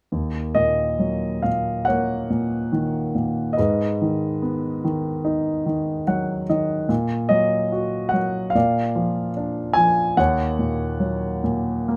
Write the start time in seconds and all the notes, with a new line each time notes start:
0.12 D#2
0.55 A#2 D#5
0.99 F#3
1.42 A#2 F5
1.85 A#3 C#5 F#5
2.30 A#2
2.72 D#3
3.15 A#2
3.53 D#5
3.57 G#2 B4
4.02 D#3
4.42 B3
4.84 D#3
5.25 D#4
5.66 D#3
6.07 F#3 F#5
6.50 D#3 D#5
6.89 A#2
7.29 F#3 D#5
7.72 F#4
8.09 F#5
8.13 F#3
8.50 F5
8.55 A#2 D5
8.95 F3
9.37 D4
9.73 F3 G#5
10.17 D#2 C#5 F#5
10.59 A#2
11.00 F#3
11.44 A#2
11.88 A#3